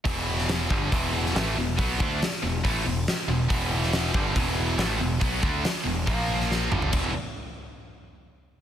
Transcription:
<<
  \new Staff \with { instrumentName = "Distorted electric guitar" } { \clef bass \time 4/4 \key e \minor \tempo 4 = 140 <e, b, e>4. <g, d g>8 <e, b, e>4 <a, e a>8 <e, b,>8 | <b, fis b>8 <d a d'>8 r8 <e, b,>8 <a, e a>8 <e, b,>8 r8 <e, b,>8 | <e, b, e>4. <g, d g>8 <e, b, e>4 <a, e a>8 <e, b,>8 | <b, fis b>8 <d a d'>8 r8 <e, b,>8 <ais, eis ais>4. <g, d g>8 |
<e, b, e>8 r2. r8 | }
  \new Staff \with { instrumentName = "Distorted electric guitar" } { \clef bass \time 4/4 \key e \minor <e, b, e>4. <g, d g>8 <e, b, e>4 <a, e a>8 <e, b,>8 | <b, fis b>8 <d a d'>8 r8 <e, b,>8 <a, e a>8 <e, b,>8 r8 <e, b,>8 | <e, b, e>4. <g, d g>8 <e, b, e>4 <a, e a>8 <e, b,>8 | <b, fis b>8 <d a d'>8 r8 <e, b,>8 <ais, eis ais>4. <g, d g>8 |
<e, b, e>8 r2. r8 | }
  \new Staff \with { instrumentName = "Picked electric bass" } { \clef bass \time 4/4 \key e \minor e,,4. g,,8 e,,4 a,,8 e,,8 | b,,8 d,8 r8 e,,8 a,,8 e,,8 r8 e,,8 | e,,4. g,,8 e,,4 a,,8 e,,8 | b,,8 d,8 r8 e,,8 ais,,4. g,,8 |
e,,8 r2. r8 | }
  \new DrumStaff \with { instrumentName = "Drums" } \drummode { \time 4/4 <hho bd>8. sn16 <hho sn>8 bd8 <hho bd>8. sn16 <hho sn>4 | <hho bd>8 bd8 <hho sn>4 <hho bd>4 <hho sn>4 | <hho bd>8. sn16 <hho sn>8 bd8 <hho bd>4 <hho sn>4 | <hho bd>8 bd8 <hho sn>4 <hho bd>8. sn16 sn8 toml16 tomfh16 |
<cymc bd>4 r4 r4 r4 | }
>>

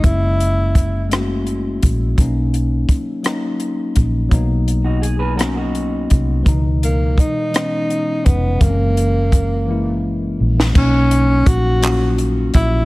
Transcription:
<<
  \new Staff \with { instrumentName = "Clean electric guitar" } { \time 6/8 \key b \major \tempo 4. = 56 r2. | r2. | r8. <dis' fis'>16 gis'16 <gis' b'>16 <fis' ais'>16 <dis' fis'>4~ <dis' fis'>16 | r2. |
r2. | r2. | }
  \new Staff \with { instrumentName = "Tenor saxophone" } { \time 6/8 \key b \major e'4. r4. | r2. | r2. | r8 ais8 dis'4. b8 |
ais2 r4 | cis'4 fis'4 r8 e'8 | }
  \new Staff \with { instrumentName = "Tine electric piano" } { \time 6/8 \key b \major <gis ais cis' e'>4 r8 <gis a ais cis' fis'>4 r8 | <fis ais cis' dis'>4 r8 <fis ais cis' dis'>4 r8 | <fis ais b dis'>4 r8 <fis ais b cis'>4 r8 | <b, e gis dis'>4 r8 <e gis b cis'>4 r8 |
<e gis ais c' cis'>4 r8 <e gis ais e'>4 r8 | <fis ais cis' dis'>4 r8 <fis ais cis' eis' fis'>4 r8 | }
  \new Staff \with { instrumentName = "Fingered electric bass" } { \clef bass \time 6/8 \key b \major fis,,2~ fis,,8 ais,,8 | b,,4 r4. ais,,8 | b,,2~ b,,8 c,8 | cis,4 r4. eis,,8 |
fis,,2~ fis,,8 ais,,8 | b,,4 ais,,4. ais,,8 | }
  \new DrumStaff \with { instrumentName = "Drums" } \drummode { \time 6/8 <hh bd>8 hh8 <hh bd>8 <hh ss>8 hh8 <hh bd>8 | <hh bd>8 hh8 <hh bd>8 <hh ss>8 hh8 <hh bd>8 | <hh bd>8 hh8 hh8 <hh ss>8 hh8 <hh bd>8 | <hh bd>8 hh8 <hh bd>8 <hh ss>8 hh8 <hh bd>8 |
<hh bd>8 hh8 <hh bd>8 r4 r16 sn16 | <cymc bd>8 hh8 <hh bd>8 <hc hh>8 hh8 <hh bd>8 | }
>>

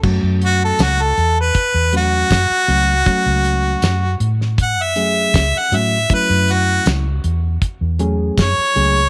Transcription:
<<
  \new Staff \with { instrumentName = "Harmonica" } { \time 4/4 \key fis \minor \tempo 4 = 79 r8 fis'16 a'16 fis'16 a'8 b'8. fis'4.~ | fis'4. r8 fis''16 e''4 fis''16 e''8 | b'8 fis'8 r2 cis''4 | }
  \new Staff \with { instrumentName = "Reed electric piano" } { \time 4/4 \key fis \minor <fis a cis' fis'>4~ <fis a cis' fis'>16 r4 r16 <fis a cis' fis'>8 r8 <fis a cis' fis'>8 | <fis a cis' fis'>4~ <fis a cis' fis'>16 r4 r16 <fis a cis' gis'>8 r8 <fis a cis' fis'>8 | <fis a cis' e'>4~ <fis a cis' e'>16 r4 r16 <fis a cis' gis'>8 r8 <fis a cis' gis'>8 | }
  \new Staff \with { instrumentName = "Fingered electric bass" } { \clef bass \time 4/4 \key fis \minor fis,16 fis,8. cis,8 e,8 r16 e,8. fis,16 r16 cis,8 | r16 cis,8. fis,8 a,8. fis,8. cis,16 r16 a,8 | r16 fis,8. cis,8 e,8 r16 e,8. fis,16 r16 cis,8 | }
  \new DrumStaff \with { instrumentName = "Drums" } \drummode { \time 4/4 <cymc bd>8 hh8 <hh sn tamb>8 hh8 <hh bd>8 hh8 <hh bd sn tamb>8 hh8 | <hh bd>8 hh8 <hh sn tamb>8 hh16 sn16 <hh bd>8 hh8 <hh bd sn tamb>8 hh8 | <hh bd>8 hh8 <hh sn tamb>8 hh8 <hh bd>8 hh8 <hh bd sn tamb>8 hh8 | }
>>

